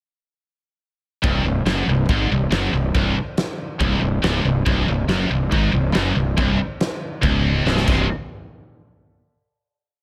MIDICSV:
0, 0, Header, 1, 4, 480
1, 0, Start_track
1, 0, Tempo, 428571
1, 1373, Time_signature, 4, 2, 24, 8
1, 11232, End_track
2, 0, Start_track
2, 0, Title_t, "Distorted electric guitar"
2, 0, Program_c, 0, 30
2, 1379, Note_on_c, 0, 36, 99
2, 1608, Note_off_c, 0, 36, 0
2, 1627, Note_on_c, 0, 36, 71
2, 1812, Note_off_c, 0, 36, 0
2, 1868, Note_on_c, 0, 42, 103
2, 2093, Note_off_c, 0, 42, 0
2, 2115, Note_on_c, 0, 36, 80
2, 2295, Note_off_c, 0, 36, 0
2, 2352, Note_on_c, 0, 44, 105
2, 2575, Note_off_c, 0, 44, 0
2, 2594, Note_on_c, 0, 36, 79
2, 2775, Note_off_c, 0, 36, 0
2, 2811, Note_on_c, 0, 42, 109
2, 3045, Note_off_c, 0, 42, 0
2, 3056, Note_on_c, 0, 36, 69
2, 3247, Note_off_c, 0, 36, 0
2, 3298, Note_on_c, 0, 36, 105
2, 3529, Note_off_c, 0, 36, 0
2, 4254, Note_on_c, 0, 36, 106
2, 4475, Note_off_c, 0, 36, 0
2, 4488, Note_on_c, 0, 36, 71
2, 4685, Note_off_c, 0, 36, 0
2, 4736, Note_on_c, 0, 37, 115
2, 4970, Note_off_c, 0, 37, 0
2, 4987, Note_on_c, 0, 36, 68
2, 5175, Note_off_c, 0, 36, 0
2, 5217, Note_on_c, 0, 36, 99
2, 5451, Note_off_c, 0, 36, 0
2, 5469, Note_on_c, 0, 36, 70
2, 5656, Note_off_c, 0, 36, 0
2, 5696, Note_on_c, 0, 42, 103
2, 5931, Note_off_c, 0, 42, 0
2, 5941, Note_on_c, 0, 36, 81
2, 6133, Note_off_c, 0, 36, 0
2, 6171, Note_on_c, 0, 44, 105
2, 6399, Note_off_c, 0, 44, 0
2, 6404, Note_on_c, 0, 36, 75
2, 6605, Note_off_c, 0, 36, 0
2, 6649, Note_on_c, 0, 42, 105
2, 6888, Note_off_c, 0, 42, 0
2, 6892, Note_on_c, 0, 36, 70
2, 7090, Note_off_c, 0, 36, 0
2, 7138, Note_on_c, 0, 36, 108
2, 7373, Note_off_c, 0, 36, 0
2, 8085, Note_on_c, 0, 37, 102
2, 8566, Note_off_c, 0, 37, 0
2, 8573, Note_on_c, 0, 36, 105
2, 8805, Note_off_c, 0, 36, 0
2, 8818, Note_on_c, 0, 36, 82
2, 8829, Note_on_c, 0, 43, 102
2, 8832, Note_on_c, 0, 48, 97
2, 9012, Note_off_c, 0, 36, 0
2, 9017, Note_off_c, 0, 43, 0
2, 9019, Note_off_c, 0, 48, 0
2, 11232, End_track
3, 0, Start_track
3, 0, Title_t, "Fingered electric bass"
3, 0, Program_c, 1, 33
3, 1385, Note_on_c, 1, 24, 98
3, 1602, Note_off_c, 1, 24, 0
3, 1616, Note_on_c, 1, 24, 85
3, 1837, Note_off_c, 1, 24, 0
3, 1852, Note_on_c, 1, 30, 93
3, 2075, Note_off_c, 1, 30, 0
3, 2098, Note_on_c, 1, 24, 86
3, 2319, Note_off_c, 1, 24, 0
3, 2338, Note_on_c, 1, 32, 101
3, 2559, Note_off_c, 1, 32, 0
3, 2580, Note_on_c, 1, 24, 83
3, 2800, Note_off_c, 1, 24, 0
3, 2814, Note_on_c, 1, 30, 99
3, 3037, Note_off_c, 1, 30, 0
3, 3051, Note_on_c, 1, 24, 82
3, 3275, Note_off_c, 1, 24, 0
3, 3298, Note_on_c, 1, 24, 104
3, 3519, Note_off_c, 1, 24, 0
3, 4255, Note_on_c, 1, 24, 100
3, 4479, Note_off_c, 1, 24, 0
3, 4485, Note_on_c, 1, 24, 83
3, 4714, Note_off_c, 1, 24, 0
3, 4732, Note_on_c, 1, 25, 98
3, 4958, Note_off_c, 1, 25, 0
3, 4981, Note_on_c, 1, 24, 86
3, 5203, Note_off_c, 1, 24, 0
3, 5221, Note_on_c, 1, 24, 102
3, 5444, Note_off_c, 1, 24, 0
3, 5466, Note_on_c, 1, 24, 84
3, 5682, Note_off_c, 1, 24, 0
3, 5689, Note_on_c, 1, 30, 102
3, 5917, Note_off_c, 1, 30, 0
3, 5931, Note_on_c, 1, 24, 87
3, 6159, Note_off_c, 1, 24, 0
3, 6185, Note_on_c, 1, 32, 103
3, 6407, Note_off_c, 1, 32, 0
3, 6420, Note_on_c, 1, 24, 80
3, 6644, Note_off_c, 1, 24, 0
3, 6670, Note_on_c, 1, 30, 98
3, 6890, Note_off_c, 1, 30, 0
3, 6904, Note_on_c, 1, 24, 85
3, 7126, Note_off_c, 1, 24, 0
3, 7144, Note_on_c, 1, 24, 105
3, 7367, Note_off_c, 1, 24, 0
3, 8094, Note_on_c, 1, 25, 105
3, 8544, Note_off_c, 1, 25, 0
3, 8575, Note_on_c, 1, 24, 93
3, 8801, Note_off_c, 1, 24, 0
3, 8821, Note_on_c, 1, 24, 95
3, 9044, Note_off_c, 1, 24, 0
3, 11232, End_track
4, 0, Start_track
4, 0, Title_t, "Drums"
4, 1386, Note_on_c, 9, 36, 114
4, 1387, Note_on_c, 9, 52, 58
4, 1498, Note_off_c, 9, 36, 0
4, 1499, Note_off_c, 9, 52, 0
4, 1861, Note_on_c, 9, 52, 66
4, 1867, Note_on_c, 9, 38, 109
4, 1973, Note_off_c, 9, 52, 0
4, 1979, Note_off_c, 9, 38, 0
4, 2338, Note_on_c, 9, 52, 66
4, 2342, Note_on_c, 9, 36, 112
4, 2450, Note_off_c, 9, 52, 0
4, 2454, Note_off_c, 9, 36, 0
4, 2819, Note_on_c, 9, 52, 66
4, 2826, Note_on_c, 9, 38, 107
4, 2931, Note_off_c, 9, 52, 0
4, 2938, Note_off_c, 9, 38, 0
4, 3300, Note_on_c, 9, 36, 103
4, 3303, Note_on_c, 9, 52, 65
4, 3412, Note_off_c, 9, 36, 0
4, 3415, Note_off_c, 9, 52, 0
4, 3778, Note_on_c, 9, 52, 60
4, 3785, Note_on_c, 9, 38, 114
4, 3890, Note_off_c, 9, 52, 0
4, 3897, Note_off_c, 9, 38, 0
4, 4262, Note_on_c, 9, 36, 118
4, 4264, Note_on_c, 9, 52, 63
4, 4374, Note_off_c, 9, 36, 0
4, 4376, Note_off_c, 9, 52, 0
4, 4743, Note_on_c, 9, 52, 60
4, 4750, Note_on_c, 9, 38, 120
4, 4855, Note_off_c, 9, 52, 0
4, 4862, Note_off_c, 9, 38, 0
4, 5221, Note_on_c, 9, 52, 63
4, 5224, Note_on_c, 9, 36, 107
4, 5333, Note_off_c, 9, 52, 0
4, 5336, Note_off_c, 9, 36, 0
4, 5697, Note_on_c, 9, 52, 59
4, 5704, Note_on_c, 9, 38, 115
4, 5809, Note_off_c, 9, 52, 0
4, 5816, Note_off_c, 9, 38, 0
4, 6182, Note_on_c, 9, 52, 69
4, 6184, Note_on_c, 9, 36, 114
4, 6294, Note_off_c, 9, 52, 0
4, 6296, Note_off_c, 9, 36, 0
4, 6659, Note_on_c, 9, 52, 66
4, 6666, Note_on_c, 9, 38, 122
4, 6771, Note_off_c, 9, 52, 0
4, 6778, Note_off_c, 9, 38, 0
4, 7143, Note_on_c, 9, 36, 105
4, 7143, Note_on_c, 9, 52, 67
4, 7255, Note_off_c, 9, 36, 0
4, 7255, Note_off_c, 9, 52, 0
4, 7620, Note_on_c, 9, 52, 62
4, 7627, Note_on_c, 9, 38, 111
4, 7732, Note_off_c, 9, 52, 0
4, 7739, Note_off_c, 9, 38, 0
4, 8101, Note_on_c, 9, 36, 109
4, 8102, Note_on_c, 9, 52, 66
4, 8213, Note_off_c, 9, 36, 0
4, 8214, Note_off_c, 9, 52, 0
4, 8589, Note_on_c, 9, 38, 68
4, 8701, Note_off_c, 9, 38, 0
4, 8702, Note_on_c, 9, 38, 64
4, 8814, Note_off_c, 9, 38, 0
4, 8821, Note_on_c, 9, 49, 91
4, 8822, Note_on_c, 9, 36, 110
4, 8933, Note_off_c, 9, 49, 0
4, 8934, Note_off_c, 9, 36, 0
4, 11232, End_track
0, 0, End_of_file